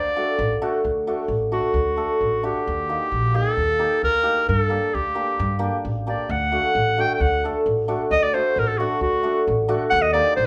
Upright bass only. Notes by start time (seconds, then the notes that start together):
0.39 A1
0.84 D2
1.28 A1
1.74 D2
2.21 A1
2.67 D#2
3.12 A#1
3.57 D#2
4.03 D2
4.49 G2
4.94 D2
5.39 G2
5.85 A1
6.29 D2
6.75 A1
7.20 D2
7.66 A1
8.11 D2
8.56 A1
9.01 D2
9.47 A1
9.92 D#2
10.37 A#1